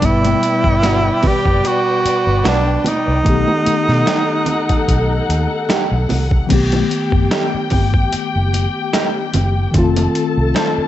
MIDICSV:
0, 0, Header, 1, 8, 480
1, 0, Start_track
1, 0, Tempo, 810811
1, 13, Time_signature, 4, 2, 24, 8
1, 6439, End_track
2, 0, Start_track
2, 0, Title_t, "String section"
2, 0, Program_c, 0, 48
2, 6, Note_on_c, 0, 71, 73
2, 9, Note_on_c, 0, 74, 72
2, 9, Note_on_c, 0, 79, 81
2, 1905, Note_off_c, 0, 71, 0
2, 1906, Note_off_c, 0, 74, 0
2, 1906, Note_off_c, 0, 79, 0
2, 1929, Note_on_c, 0, 69, 75
2, 1929, Note_on_c, 0, 78, 84
2, 1930, Note_on_c, 0, 63, 79
2, 3826, Note_off_c, 0, 63, 0
2, 3826, Note_off_c, 0, 69, 0
2, 3826, Note_off_c, 0, 78, 0
2, 3855, Note_on_c, 0, 67, 66
2, 3856, Note_on_c, 0, 79, 86
2, 5748, Note_off_c, 0, 67, 0
2, 5748, Note_off_c, 0, 79, 0
2, 5762, Note_on_c, 0, 81, 82
2, 5764, Note_on_c, 0, 69, 82
2, 6439, Note_off_c, 0, 69, 0
2, 6439, Note_off_c, 0, 81, 0
2, 6439, End_track
3, 0, Start_track
3, 0, Title_t, "Tenor saxophone"
3, 0, Program_c, 1, 66
3, 30, Note_on_c, 1, 64, 98
3, 752, Note_on_c, 1, 67, 96
3, 761, Note_off_c, 1, 64, 0
3, 988, Note_on_c, 1, 66, 95
3, 997, Note_off_c, 1, 67, 0
3, 1460, Note_off_c, 1, 66, 0
3, 1469, Note_on_c, 1, 62, 90
3, 1706, Note_on_c, 1, 63, 93
3, 1714, Note_off_c, 1, 62, 0
3, 3378, Note_off_c, 1, 63, 0
3, 6439, End_track
4, 0, Start_track
4, 0, Title_t, "Clean electric guitar"
4, 0, Program_c, 2, 27
4, 487, Note_on_c, 2, 59, 64
4, 492, Note_on_c, 2, 62, 69
4, 495, Note_on_c, 2, 66, 81
4, 580, Note_off_c, 2, 59, 0
4, 582, Note_off_c, 2, 62, 0
4, 584, Note_off_c, 2, 66, 0
4, 1443, Note_on_c, 2, 59, 67
4, 1449, Note_on_c, 2, 62, 73
4, 1452, Note_on_c, 2, 66, 85
4, 1538, Note_off_c, 2, 59, 0
4, 1541, Note_off_c, 2, 62, 0
4, 1542, Note_off_c, 2, 66, 0
4, 2404, Note_on_c, 2, 57, 60
4, 2409, Note_on_c, 2, 63, 77
4, 2414, Note_on_c, 2, 67, 72
4, 2498, Note_off_c, 2, 57, 0
4, 2500, Note_off_c, 2, 63, 0
4, 2503, Note_off_c, 2, 67, 0
4, 3368, Note_on_c, 2, 57, 64
4, 3372, Note_on_c, 2, 63, 69
4, 3377, Note_on_c, 2, 67, 73
4, 3460, Note_off_c, 2, 57, 0
4, 3462, Note_off_c, 2, 63, 0
4, 3464, Note_off_c, 2, 67, 0
4, 4327, Note_on_c, 2, 57, 69
4, 4331, Note_on_c, 2, 63, 76
4, 4335, Note_on_c, 2, 67, 78
4, 4419, Note_off_c, 2, 57, 0
4, 4421, Note_off_c, 2, 63, 0
4, 4423, Note_off_c, 2, 67, 0
4, 5287, Note_on_c, 2, 57, 72
4, 5292, Note_on_c, 2, 63, 84
4, 5295, Note_on_c, 2, 67, 82
4, 5379, Note_off_c, 2, 57, 0
4, 5381, Note_off_c, 2, 63, 0
4, 5383, Note_off_c, 2, 67, 0
4, 6245, Note_on_c, 2, 60, 75
4, 6251, Note_on_c, 2, 63, 74
4, 6255, Note_on_c, 2, 69, 80
4, 6337, Note_off_c, 2, 60, 0
4, 6340, Note_off_c, 2, 63, 0
4, 6343, Note_off_c, 2, 69, 0
4, 6439, End_track
5, 0, Start_track
5, 0, Title_t, "Tine electric piano"
5, 0, Program_c, 3, 4
5, 0, Control_c, 3, 64, 127
5, 0, Note_on_c, 3, 47, 60
5, 9, Note_on_c, 3, 55, 59
5, 21, Note_on_c, 3, 59, 56
5, 22, Control_c, 3, 64, 0
5, 105, Control_c, 3, 64, 127
5, 1899, Note_off_c, 3, 47, 0
5, 1906, Note_off_c, 3, 55, 0
5, 1910, Note_on_c, 3, 51, 64
5, 1912, Note_off_c, 3, 59, 0
5, 1923, Note_on_c, 3, 57, 53
5, 1938, Note_on_c, 3, 59, 50
5, 1941, Control_c, 3, 64, 0
5, 1950, Note_on_c, 3, 67, 66
5, 2035, Control_c, 3, 64, 127
5, 3817, Note_off_c, 3, 51, 0
5, 3823, Note_off_c, 3, 57, 0
5, 3830, Note_off_c, 3, 59, 0
5, 3830, Note_on_c, 3, 51, 70
5, 3837, Note_off_c, 3, 67, 0
5, 3843, Note_on_c, 3, 57, 57
5, 3857, Note_on_c, 3, 59, 66
5, 3858, Control_c, 3, 64, 0
5, 3871, Note_on_c, 3, 67, 77
5, 3948, Control_c, 3, 64, 127
5, 5736, Note_off_c, 3, 51, 0
5, 5742, Note_off_c, 3, 57, 0
5, 5749, Note_off_c, 3, 59, 0
5, 5751, Note_on_c, 3, 51, 70
5, 5756, Note_off_c, 3, 67, 0
5, 5766, Note_on_c, 3, 57, 61
5, 5777, Control_c, 3, 64, 0
5, 5779, Note_on_c, 3, 60, 65
5, 5792, Note_on_c, 3, 65, 86
5, 5883, Control_c, 3, 64, 127
5, 6439, Note_off_c, 3, 51, 0
5, 6439, Note_off_c, 3, 57, 0
5, 6439, Note_off_c, 3, 60, 0
5, 6439, Note_off_c, 3, 65, 0
5, 6439, End_track
6, 0, Start_track
6, 0, Title_t, "Fingered electric bass"
6, 0, Program_c, 4, 33
6, 14, Note_on_c, 4, 31, 106
6, 195, Note_off_c, 4, 31, 0
6, 382, Note_on_c, 4, 31, 81
6, 647, Note_off_c, 4, 31, 0
6, 863, Note_on_c, 4, 30, 81
6, 946, Note_off_c, 4, 30, 0
6, 1342, Note_on_c, 4, 31, 85
6, 1425, Note_off_c, 4, 31, 0
6, 1452, Note_on_c, 4, 35, 94
6, 1633, Note_off_c, 4, 35, 0
6, 1822, Note_on_c, 4, 36, 83
6, 1905, Note_off_c, 4, 36, 0
6, 1930, Note_on_c, 4, 35, 91
6, 2029, Note_off_c, 4, 35, 0
6, 2301, Note_on_c, 4, 47, 77
6, 2385, Note_off_c, 4, 47, 0
6, 2893, Note_on_c, 4, 35, 94
6, 3074, Note_off_c, 4, 35, 0
6, 3133, Note_on_c, 4, 39, 80
6, 3230, Note_off_c, 4, 39, 0
6, 3502, Note_on_c, 4, 35, 87
6, 3585, Note_off_c, 4, 35, 0
6, 3616, Note_on_c, 4, 36, 80
6, 3795, Note_off_c, 4, 36, 0
6, 3853, Note_on_c, 4, 35, 98
6, 4033, Note_off_c, 4, 35, 0
6, 4218, Note_on_c, 4, 30, 68
6, 4302, Note_off_c, 4, 30, 0
6, 4573, Note_on_c, 4, 31, 77
6, 4753, Note_off_c, 4, 31, 0
6, 4947, Note_on_c, 4, 30, 74
6, 5126, Note_off_c, 4, 30, 0
6, 5532, Note_on_c, 4, 30, 84
6, 5713, Note_off_c, 4, 30, 0
6, 5772, Note_on_c, 4, 29, 108
6, 5952, Note_off_c, 4, 29, 0
6, 6142, Note_on_c, 4, 36, 78
6, 6224, Note_off_c, 4, 36, 0
6, 6439, End_track
7, 0, Start_track
7, 0, Title_t, "Muted fingered electric bass strokes"
7, 735, Note_on_c, 9, 29, 44
7, 794, Note_off_c, 9, 29, 0
7, 1215, Note_on_c, 9, 29, 39
7, 1275, Note_off_c, 9, 29, 0
7, 2172, Note_on_c, 9, 29, 47
7, 2231, Note_off_c, 9, 29, 0
7, 4466, Note_on_c, 9, 29, 42
7, 4525, Note_off_c, 9, 29, 0
7, 4817, Note_on_c, 9, 29, 47
7, 4876, Note_off_c, 9, 29, 0
7, 6381, Note_on_c, 9, 29, 43
7, 6439, Note_off_c, 9, 29, 0
7, 6439, End_track
8, 0, Start_track
8, 0, Title_t, "Drums"
8, 12, Note_on_c, 9, 36, 90
8, 14, Note_on_c, 9, 42, 69
8, 71, Note_off_c, 9, 36, 0
8, 73, Note_off_c, 9, 42, 0
8, 145, Note_on_c, 9, 42, 51
8, 149, Note_on_c, 9, 63, 70
8, 204, Note_off_c, 9, 42, 0
8, 208, Note_off_c, 9, 63, 0
8, 252, Note_on_c, 9, 63, 43
8, 254, Note_on_c, 9, 42, 56
8, 311, Note_off_c, 9, 63, 0
8, 314, Note_off_c, 9, 42, 0
8, 379, Note_on_c, 9, 36, 83
8, 439, Note_off_c, 9, 36, 0
8, 488, Note_on_c, 9, 62, 35
8, 494, Note_on_c, 9, 38, 91
8, 494, Note_on_c, 9, 42, 95
8, 547, Note_off_c, 9, 62, 0
8, 553, Note_off_c, 9, 38, 0
8, 554, Note_off_c, 9, 42, 0
8, 726, Note_on_c, 9, 46, 42
8, 726, Note_on_c, 9, 62, 32
8, 726, Note_on_c, 9, 64, 73
8, 733, Note_on_c, 9, 36, 84
8, 785, Note_off_c, 9, 46, 0
8, 785, Note_off_c, 9, 62, 0
8, 785, Note_off_c, 9, 64, 0
8, 792, Note_off_c, 9, 36, 0
8, 861, Note_on_c, 9, 36, 80
8, 921, Note_off_c, 9, 36, 0
8, 970, Note_on_c, 9, 62, 34
8, 975, Note_on_c, 9, 42, 71
8, 1030, Note_off_c, 9, 62, 0
8, 1034, Note_off_c, 9, 42, 0
8, 1217, Note_on_c, 9, 42, 70
8, 1277, Note_off_c, 9, 42, 0
8, 1446, Note_on_c, 9, 62, 27
8, 1446, Note_on_c, 9, 63, 60
8, 1452, Note_on_c, 9, 38, 100
8, 1456, Note_on_c, 9, 42, 83
8, 1506, Note_off_c, 9, 62, 0
8, 1506, Note_off_c, 9, 63, 0
8, 1511, Note_off_c, 9, 38, 0
8, 1515, Note_off_c, 9, 42, 0
8, 1684, Note_on_c, 9, 62, 30
8, 1684, Note_on_c, 9, 63, 64
8, 1684, Note_on_c, 9, 64, 58
8, 1692, Note_on_c, 9, 42, 63
8, 1743, Note_off_c, 9, 62, 0
8, 1743, Note_off_c, 9, 63, 0
8, 1743, Note_off_c, 9, 64, 0
8, 1751, Note_off_c, 9, 42, 0
8, 1921, Note_on_c, 9, 62, 27
8, 1921, Note_on_c, 9, 64, 61
8, 1929, Note_on_c, 9, 36, 94
8, 1929, Note_on_c, 9, 42, 73
8, 1980, Note_off_c, 9, 62, 0
8, 1980, Note_off_c, 9, 64, 0
8, 1988, Note_off_c, 9, 36, 0
8, 1989, Note_off_c, 9, 42, 0
8, 2058, Note_on_c, 9, 63, 70
8, 2117, Note_off_c, 9, 63, 0
8, 2165, Note_on_c, 9, 63, 46
8, 2169, Note_on_c, 9, 42, 59
8, 2224, Note_off_c, 9, 63, 0
8, 2229, Note_off_c, 9, 42, 0
8, 2299, Note_on_c, 9, 38, 31
8, 2358, Note_off_c, 9, 38, 0
8, 2403, Note_on_c, 9, 62, 35
8, 2410, Note_on_c, 9, 38, 98
8, 2411, Note_on_c, 9, 42, 92
8, 2462, Note_off_c, 9, 62, 0
8, 2469, Note_off_c, 9, 38, 0
8, 2470, Note_off_c, 9, 42, 0
8, 2640, Note_on_c, 9, 62, 33
8, 2640, Note_on_c, 9, 64, 66
8, 2641, Note_on_c, 9, 42, 64
8, 2699, Note_off_c, 9, 62, 0
8, 2699, Note_off_c, 9, 64, 0
8, 2701, Note_off_c, 9, 42, 0
8, 2778, Note_on_c, 9, 42, 43
8, 2780, Note_on_c, 9, 36, 91
8, 2837, Note_off_c, 9, 42, 0
8, 2839, Note_off_c, 9, 36, 0
8, 2890, Note_on_c, 9, 36, 80
8, 2892, Note_on_c, 9, 42, 71
8, 2949, Note_off_c, 9, 36, 0
8, 2952, Note_off_c, 9, 42, 0
8, 3137, Note_on_c, 9, 42, 70
8, 3196, Note_off_c, 9, 42, 0
8, 3368, Note_on_c, 9, 63, 65
8, 3373, Note_on_c, 9, 38, 98
8, 3377, Note_on_c, 9, 42, 89
8, 3427, Note_off_c, 9, 63, 0
8, 3432, Note_off_c, 9, 38, 0
8, 3436, Note_off_c, 9, 42, 0
8, 3607, Note_on_c, 9, 63, 63
8, 3607, Note_on_c, 9, 64, 59
8, 3611, Note_on_c, 9, 46, 44
8, 3666, Note_off_c, 9, 63, 0
8, 3666, Note_off_c, 9, 64, 0
8, 3671, Note_off_c, 9, 46, 0
8, 3738, Note_on_c, 9, 36, 90
8, 3797, Note_off_c, 9, 36, 0
8, 3842, Note_on_c, 9, 62, 29
8, 3842, Note_on_c, 9, 64, 60
8, 3849, Note_on_c, 9, 42, 68
8, 3850, Note_on_c, 9, 36, 87
8, 3850, Note_on_c, 9, 49, 68
8, 3901, Note_off_c, 9, 62, 0
8, 3901, Note_off_c, 9, 64, 0
8, 3909, Note_off_c, 9, 36, 0
8, 3909, Note_off_c, 9, 42, 0
8, 3910, Note_off_c, 9, 49, 0
8, 3979, Note_on_c, 9, 42, 47
8, 3982, Note_on_c, 9, 63, 69
8, 4038, Note_off_c, 9, 42, 0
8, 4041, Note_off_c, 9, 63, 0
8, 4088, Note_on_c, 9, 62, 30
8, 4092, Note_on_c, 9, 42, 50
8, 4147, Note_off_c, 9, 62, 0
8, 4151, Note_off_c, 9, 42, 0
8, 4217, Note_on_c, 9, 36, 79
8, 4276, Note_off_c, 9, 36, 0
8, 4329, Note_on_c, 9, 38, 109
8, 4330, Note_on_c, 9, 42, 81
8, 4389, Note_off_c, 9, 38, 0
8, 4389, Note_off_c, 9, 42, 0
8, 4560, Note_on_c, 9, 46, 46
8, 4563, Note_on_c, 9, 64, 69
8, 4570, Note_on_c, 9, 36, 86
8, 4620, Note_off_c, 9, 46, 0
8, 4622, Note_off_c, 9, 64, 0
8, 4629, Note_off_c, 9, 36, 0
8, 4699, Note_on_c, 9, 36, 83
8, 4758, Note_off_c, 9, 36, 0
8, 4807, Note_on_c, 9, 62, 32
8, 4810, Note_on_c, 9, 42, 77
8, 4867, Note_off_c, 9, 62, 0
8, 4870, Note_off_c, 9, 42, 0
8, 5052, Note_on_c, 9, 62, 30
8, 5056, Note_on_c, 9, 42, 67
8, 5111, Note_off_c, 9, 62, 0
8, 5115, Note_off_c, 9, 42, 0
8, 5289, Note_on_c, 9, 38, 106
8, 5290, Note_on_c, 9, 63, 64
8, 5293, Note_on_c, 9, 42, 85
8, 5348, Note_off_c, 9, 38, 0
8, 5349, Note_off_c, 9, 63, 0
8, 5352, Note_off_c, 9, 42, 0
8, 5527, Note_on_c, 9, 42, 68
8, 5530, Note_on_c, 9, 63, 66
8, 5530, Note_on_c, 9, 64, 65
8, 5586, Note_off_c, 9, 42, 0
8, 5589, Note_off_c, 9, 63, 0
8, 5589, Note_off_c, 9, 64, 0
8, 5764, Note_on_c, 9, 62, 29
8, 5764, Note_on_c, 9, 64, 64
8, 5767, Note_on_c, 9, 42, 73
8, 5768, Note_on_c, 9, 36, 87
8, 5823, Note_off_c, 9, 62, 0
8, 5823, Note_off_c, 9, 64, 0
8, 5826, Note_off_c, 9, 42, 0
8, 5828, Note_off_c, 9, 36, 0
8, 5899, Note_on_c, 9, 42, 52
8, 5900, Note_on_c, 9, 63, 76
8, 5958, Note_off_c, 9, 42, 0
8, 5959, Note_off_c, 9, 63, 0
8, 6010, Note_on_c, 9, 42, 59
8, 6069, Note_off_c, 9, 42, 0
8, 6241, Note_on_c, 9, 62, 33
8, 6251, Note_on_c, 9, 38, 105
8, 6251, Note_on_c, 9, 42, 91
8, 6300, Note_off_c, 9, 62, 0
8, 6310, Note_off_c, 9, 38, 0
8, 6310, Note_off_c, 9, 42, 0
8, 6439, End_track
0, 0, End_of_file